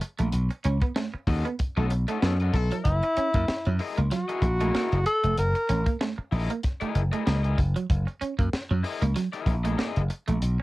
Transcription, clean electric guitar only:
0, 0, Header, 1, 3, 480
1, 0, Start_track
1, 0, Tempo, 630252
1, 250, Time_signature, 4, 2, 24, 8
1, 8095, End_track
2, 0, Start_track
2, 0, Title_t, "Clean electric guitar"
2, 0, Program_c, 0, 27
2, 142, Note_on_c, 0, 57, 73
2, 214, Note_off_c, 0, 57, 0
2, 493, Note_on_c, 0, 61, 73
2, 583, Note_off_c, 0, 61, 0
2, 625, Note_on_c, 0, 59, 67
2, 696, Note_off_c, 0, 59, 0
2, 731, Note_on_c, 0, 57, 73
2, 822, Note_off_c, 0, 57, 0
2, 1105, Note_on_c, 0, 59, 73
2, 1177, Note_off_c, 0, 59, 0
2, 1347, Note_on_c, 0, 57, 69
2, 1418, Note_off_c, 0, 57, 0
2, 1587, Note_on_c, 0, 57, 79
2, 1658, Note_off_c, 0, 57, 0
2, 1695, Note_on_c, 0, 59, 76
2, 1785, Note_off_c, 0, 59, 0
2, 2070, Note_on_c, 0, 54, 73
2, 2141, Note_off_c, 0, 54, 0
2, 2413, Note_on_c, 0, 61, 80
2, 2504, Note_off_c, 0, 61, 0
2, 2550, Note_on_c, 0, 58, 69
2, 2621, Note_off_c, 0, 58, 0
2, 2791, Note_on_c, 0, 54, 75
2, 2862, Note_off_c, 0, 54, 0
2, 3027, Note_on_c, 0, 58, 81
2, 3099, Note_off_c, 0, 58, 0
2, 3134, Note_on_c, 0, 54, 83
2, 3225, Note_off_c, 0, 54, 0
2, 3510, Note_on_c, 0, 57, 74
2, 3581, Note_off_c, 0, 57, 0
2, 3615, Note_on_c, 0, 58, 78
2, 3705, Note_off_c, 0, 58, 0
2, 3988, Note_on_c, 0, 57, 75
2, 4060, Note_off_c, 0, 57, 0
2, 4334, Note_on_c, 0, 61, 72
2, 4426, Note_off_c, 0, 61, 0
2, 4465, Note_on_c, 0, 58, 69
2, 4538, Note_off_c, 0, 58, 0
2, 4576, Note_on_c, 0, 57, 65
2, 4666, Note_off_c, 0, 57, 0
2, 4954, Note_on_c, 0, 58, 79
2, 5024, Note_off_c, 0, 58, 0
2, 5191, Note_on_c, 0, 57, 72
2, 5262, Note_off_c, 0, 57, 0
2, 5431, Note_on_c, 0, 57, 81
2, 5502, Note_off_c, 0, 57, 0
2, 5534, Note_on_c, 0, 58, 70
2, 5625, Note_off_c, 0, 58, 0
2, 5910, Note_on_c, 0, 54, 71
2, 5981, Note_off_c, 0, 54, 0
2, 6253, Note_on_c, 0, 61, 77
2, 6345, Note_off_c, 0, 61, 0
2, 6387, Note_on_c, 0, 58, 72
2, 6459, Note_off_c, 0, 58, 0
2, 6631, Note_on_c, 0, 54, 78
2, 6702, Note_off_c, 0, 54, 0
2, 6866, Note_on_c, 0, 58, 83
2, 6938, Note_off_c, 0, 58, 0
2, 6975, Note_on_c, 0, 54, 86
2, 7065, Note_off_c, 0, 54, 0
2, 7348, Note_on_c, 0, 57, 76
2, 7419, Note_off_c, 0, 57, 0
2, 7453, Note_on_c, 0, 58, 74
2, 7544, Note_off_c, 0, 58, 0
2, 7826, Note_on_c, 0, 57, 82
2, 7898, Note_off_c, 0, 57, 0
2, 8095, End_track
3, 0, Start_track
3, 0, Title_t, "Muted clean electric guitar strokes"
3, 11, Note_on_c, 9, 29, 49
3, 87, Note_off_c, 9, 29, 0
3, 386, Note_on_c, 9, 29, 46
3, 462, Note_off_c, 9, 29, 0
3, 866, Note_on_c, 9, 29, 47
3, 942, Note_off_c, 9, 29, 0
3, 1453, Note_on_c, 9, 29, 47
3, 1530, Note_off_c, 9, 29, 0
3, 1939, Note_on_c, 9, 29, 46
3, 2015, Note_off_c, 9, 29, 0
3, 2310, Note_on_c, 9, 29, 50
3, 2387, Note_off_c, 9, 29, 0
3, 2897, Note_on_c, 9, 29, 46
3, 2973, Note_off_c, 9, 29, 0
3, 3269, Note_on_c, 9, 29, 45
3, 3345, Note_off_c, 9, 29, 0
3, 3855, Note_on_c, 9, 29, 46
3, 3931, Note_off_c, 9, 29, 0
3, 4229, Note_on_c, 9, 29, 43
3, 4305, Note_off_c, 9, 29, 0
3, 4707, Note_on_c, 9, 29, 41
3, 4783, Note_off_c, 9, 29, 0
3, 5298, Note_on_c, 9, 29, 44
3, 5374, Note_off_c, 9, 29, 0
3, 5771, Note_on_c, 9, 29, 44
3, 5847, Note_off_c, 9, 29, 0
3, 6146, Note_on_c, 9, 29, 44
3, 6222, Note_off_c, 9, 29, 0
3, 6734, Note_on_c, 9, 29, 43
3, 6810, Note_off_c, 9, 29, 0
3, 7109, Note_on_c, 9, 29, 49
3, 7185, Note_off_c, 9, 29, 0
3, 7695, Note_on_c, 9, 29, 44
3, 7771, Note_off_c, 9, 29, 0
3, 8070, Note_on_c, 9, 29, 49
3, 8095, Note_off_c, 9, 29, 0
3, 8095, End_track
0, 0, End_of_file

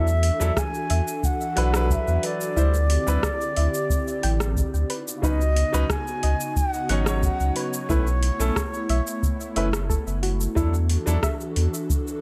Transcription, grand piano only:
0, 0, Header, 1, 2, 480
1, 0, Start_track
1, 0, Tempo, 666667
1, 1848, Time_signature, 4, 2, 24, 8
1, 8793, End_track
2, 0, Start_track
2, 0, Title_t, "Grand piano"
2, 0, Program_c, 0, 0
2, 286, Note_on_c, 0, 54, 93
2, 291, Note_on_c, 0, 62, 84
2, 295, Note_on_c, 0, 64, 92
2, 301, Note_on_c, 0, 69, 98
2, 356, Note_off_c, 0, 54, 0
2, 358, Note_off_c, 0, 62, 0
2, 360, Note_off_c, 0, 64, 0
2, 363, Note_off_c, 0, 69, 0
2, 1122, Note_on_c, 0, 54, 91
2, 1127, Note_on_c, 0, 62, 87
2, 1133, Note_on_c, 0, 64, 82
2, 1138, Note_on_c, 0, 71, 101
2, 1218, Note_off_c, 0, 54, 0
2, 1221, Note_off_c, 0, 62, 0
2, 1224, Note_off_c, 0, 64, 0
2, 1226, Note_off_c, 0, 71, 0
2, 1242, Note_on_c, 0, 54, 92
2, 1252, Note_on_c, 0, 62, 79
2, 1261, Note_on_c, 0, 64, 81
2, 1271, Note_on_c, 0, 71, 98
2, 1816, Note_off_c, 0, 54, 0
2, 1820, Note_off_c, 0, 62, 0
2, 1825, Note_off_c, 0, 64, 0
2, 1830, Note_off_c, 0, 71, 0
2, 1845, Note_on_c, 0, 55, 84
2, 1848, Note_on_c, 0, 62, 77
2, 1854, Note_on_c, 0, 64, 78
2, 1859, Note_on_c, 0, 72, 91
2, 1959, Note_off_c, 0, 55, 0
2, 1961, Note_off_c, 0, 62, 0
2, 1964, Note_off_c, 0, 64, 0
2, 1966, Note_off_c, 0, 72, 0
2, 2207, Note_on_c, 0, 55, 93
2, 2211, Note_on_c, 0, 62, 82
2, 2216, Note_on_c, 0, 64, 81
2, 2220, Note_on_c, 0, 71, 99
2, 2317, Note_off_c, 0, 55, 0
2, 2319, Note_off_c, 0, 62, 0
2, 2321, Note_off_c, 0, 64, 0
2, 2324, Note_off_c, 0, 71, 0
2, 3759, Note_on_c, 0, 54, 76
2, 3762, Note_on_c, 0, 61, 69
2, 3769, Note_on_c, 0, 63, 76
2, 3775, Note_on_c, 0, 71, 89
2, 3876, Note_off_c, 0, 54, 0
2, 3878, Note_off_c, 0, 61, 0
2, 3881, Note_off_c, 0, 63, 0
2, 3884, Note_off_c, 0, 71, 0
2, 4123, Note_on_c, 0, 54, 95
2, 4127, Note_on_c, 0, 61, 87
2, 4133, Note_on_c, 0, 63, 94
2, 4135, Note_on_c, 0, 71, 105
2, 4194, Note_off_c, 0, 54, 0
2, 4196, Note_off_c, 0, 61, 0
2, 4199, Note_off_c, 0, 63, 0
2, 4200, Note_off_c, 0, 71, 0
2, 4963, Note_on_c, 0, 54, 95
2, 4967, Note_on_c, 0, 61, 91
2, 4971, Note_on_c, 0, 63, 92
2, 4977, Note_on_c, 0, 73, 98
2, 5059, Note_off_c, 0, 54, 0
2, 5061, Note_off_c, 0, 61, 0
2, 5063, Note_off_c, 0, 63, 0
2, 5065, Note_off_c, 0, 73, 0
2, 5072, Note_on_c, 0, 54, 88
2, 5081, Note_on_c, 0, 61, 80
2, 5094, Note_on_c, 0, 63, 81
2, 5101, Note_on_c, 0, 73, 99
2, 5650, Note_off_c, 0, 54, 0
2, 5655, Note_off_c, 0, 61, 0
2, 5661, Note_off_c, 0, 63, 0
2, 5665, Note_off_c, 0, 73, 0
2, 5679, Note_on_c, 0, 57, 91
2, 5684, Note_on_c, 0, 61, 78
2, 5689, Note_on_c, 0, 64, 81
2, 5694, Note_on_c, 0, 71, 92
2, 5796, Note_off_c, 0, 57, 0
2, 5799, Note_off_c, 0, 61, 0
2, 5801, Note_off_c, 0, 64, 0
2, 5804, Note_off_c, 0, 71, 0
2, 6044, Note_on_c, 0, 57, 97
2, 6047, Note_on_c, 0, 61, 86
2, 6053, Note_on_c, 0, 64, 80
2, 6056, Note_on_c, 0, 69, 100
2, 6155, Note_off_c, 0, 57, 0
2, 6157, Note_off_c, 0, 61, 0
2, 6160, Note_off_c, 0, 64, 0
2, 6161, Note_off_c, 0, 69, 0
2, 6882, Note_on_c, 0, 57, 80
2, 6886, Note_on_c, 0, 61, 74
2, 6890, Note_on_c, 0, 64, 77
2, 6895, Note_on_c, 0, 71, 91
2, 6955, Note_off_c, 0, 57, 0
2, 6958, Note_off_c, 0, 61, 0
2, 6960, Note_off_c, 0, 64, 0
2, 6962, Note_off_c, 0, 71, 0
2, 7598, Note_on_c, 0, 54, 85
2, 7604, Note_on_c, 0, 62, 72
2, 7608, Note_on_c, 0, 64, 72
2, 7612, Note_on_c, 0, 69, 87
2, 7716, Note_off_c, 0, 54, 0
2, 7719, Note_off_c, 0, 62, 0
2, 7721, Note_off_c, 0, 64, 0
2, 7723, Note_off_c, 0, 69, 0
2, 7962, Note_on_c, 0, 54, 91
2, 7967, Note_on_c, 0, 62, 91
2, 7973, Note_on_c, 0, 64, 88
2, 7976, Note_on_c, 0, 69, 103
2, 8034, Note_off_c, 0, 54, 0
2, 8036, Note_off_c, 0, 62, 0
2, 8039, Note_off_c, 0, 64, 0
2, 8041, Note_off_c, 0, 69, 0
2, 8793, End_track
0, 0, End_of_file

